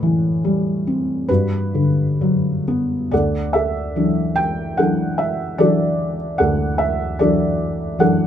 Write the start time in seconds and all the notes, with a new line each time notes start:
Already playing: A2 F#4 B4
0.03 E3
0.44 G3
0.87 C4
1.28 G2 F#4 B4
1.75 D3
2.21 F#3
2.68 B3
3.11 D2 A4 D5 F#5
3.53 A4 E5
3.96 E3 F#3 D4
4.36 G5
4.77 E3 F#3 D4 A4 F#5
5.18 E5
5.58 E3 F#3 D4 F#4 A4 D5
6.38 D2 A4 F#5
6.78 E5
7.19 E3 F#3 D4 F#4 A4 D5
7.99 E3 F#3 D4 A4 F#5